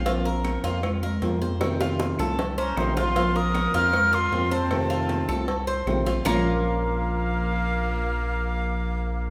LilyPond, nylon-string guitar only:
\new Staff \with { instrumentName = "Nylon-string guitar" } { \time 4/4 \key bes \minor \tempo 4 = 155 <f bes c' f'>4. <bes c' f'>8 r4 <f bes c' f'>8 <bes c' f'>8 | <c ees a c' f'>4. <ees a c' f'>8 r4 <c ees a c' f'>8 <a c' f'>8 | <f bes c' f'>4. <bes c' f'>8 r4 <f bes c' f'>8 <bes c' f'>8 | <c ees a c' f'>4. <ees a c' f'>8 r4 <c ees a c' f'>8 <a c' f'>8 |
<bes, f bes des' f'>1~ | <bes, f bes des' f'>1 | }